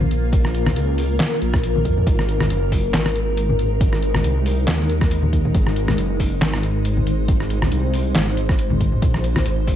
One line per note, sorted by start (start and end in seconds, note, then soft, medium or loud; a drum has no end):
0.00 0.75 A#1 loud
0.00 2.03 A#3 medium
0.00 2.02 F4 medium
0.00 5.50 A#4 medium
0.00 high conga medium
0.00 low conga medium
0.11 closed hi-hat medium
0.33 kick loud
0.33 closed hi-hat medium
0.44 cross-stick medium
0.44 muted conga medium
0.54 closed hi-hat soft
0.66 cross-stick medium
0.66 muted conga medium
0.66 high conga loud
0.66 low conga medium
0.76 1.18 C#2 loud
0.76 closed hi-hat medium
0.98 open hi-hat medium
1.20 snare loud
1.20 clap medium
1.20 closed hi-hat medium
1.20 high conga medium
1.42 1.83 A#1 loud
1.42 closed hi-hat medium
1.53 kick loud
1.53 cross-stick medium
1.63 closed hi-hat medium
1.75 muted conga soft
1.75 high conga medium
1.75 low conga medium
1.85 2.05 F2 loud
1.85 kick medium
1.85 closed hi-hat medium
1.97 low conga medium
2.07 2.49 G#1 loud
2.07 8.98 G#3 medium
2.07 8.98 D#4 medium
2.07 kick loud
2.07 closed hi-hat medium
2.19 cross-stick medium
2.19 muted conga medium
2.29 closed hi-hat soft
2.40 cross-stick medium
2.40 muted conga medium
2.40 high conga medium
2.40 low conga medium
2.50 2.92 F#1 loud
2.50 closed hi-hat medium
2.72 kick medium
2.72 open hi-hat loud
2.93 4.23 G#1 loud
2.93 snare loud
2.93 clap medium
2.93 closed hi-hat medium
2.93 high conga medium
3.05 cross-stick medium
3.05 muted conga medium
3.16 closed hi-hat medium
3.37 closed hi-hat medium
3.49 high conga medium
3.49 low conga medium
3.59 closed hi-hat medium
3.81 kick loud
3.81 closed hi-hat medium
3.92 cross-stick medium
3.92 muted conga medium
4.02 closed hi-hat soft
4.14 cross-stick medium
4.14 muted conga medium
4.14 high conga medium
4.14 low conga medium
4.24 4.66 C2 loud
4.24 closed hi-hat medium
4.46 open hi-hat loud
4.68 5.53 D#2 medium
4.68 snare loud
4.68 clap medium
4.68 closed hi-hat medium
4.68 high conga medium
4.89 closed hi-hat medium
5.01 kick loud
5.01 cross-stick medium
5.11 closed hi-hat medium
5.22 muted conga soft
5.22 high conga medium
5.22 low conga medium
5.33 kick medium
5.33 closed hi-hat medium
5.45 low conga medium
5.54 5.96 G#1 loud
5.54 9.76 C5 medium
5.54 kick loud
5.54 closed hi-hat medium
5.67 cross-stick medium
5.67 muted conga medium
5.76 closed hi-hat medium
5.87 cross-stick medium
5.87 muted conga medium
5.87 high conga medium
5.87 low conga medium
5.98 6.40 F#1 loud
5.98 closed hi-hat medium
6.20 kick medium
6.20 open hi-hat loud
6.41 7.70 G#1 loud
6.41 snare loud
6.41 clap medium
6.41 closed hi-hat medium
6.41 high conga medium
6.54 cross-stick medium
6.54 muted conga medium
6.63 closed hi-hat medium
6.85 closed hi-hat medium
6.97 high conga medium
6.97 low conga medium
7.07 closed hi-hat medium
7.28 kick loud
7.28 closed hi-hat medium
7.40 cross-stick soft
7.40 muted conga medium
7.50 closed hi-hat medium
7.62 cross-stick medium
7.62 muted conga medium
7.62 high conga medium
7.62 low conga medium
7.72 8.14 C2 medium
7.72 closed hi-hat medium
7.94 open hi-hat loud
8.15 9.01 G#1 loud
8.15 snare loud
8.15 clap medium
8.15 closed hi-hat medium
8.15 high conga medium
8.36 closed hi-hat medium
8.36 muted conga soft
8.49 kick loud
8.49 cross-stick medium
8.59 closed hi-hat medium
8.70 muted conga soft
8.70 high conga loud
8.70 low conga medium
8.80 kick medium
8.80 closed hi-hat medium
8.92 low conga medium
9.02 9.44 A#1 loud
9.02 9.76 A#3 medium
9.02 9.76 F4 medium
9.02 kick loud
9.02 closed hi-hat medium
9.14 cross-stick medium
9.14 muted conga medium
9.24 closed hi-hat medium
9.36 cross-stick medium
9.36 muted conga medium
9.36 high conga loud
9.36 low conga medium
9.46 9.76 G#1 medium
9.46 closed hi-hat medium
9.67 kick medium
9.67 open hi-hat medium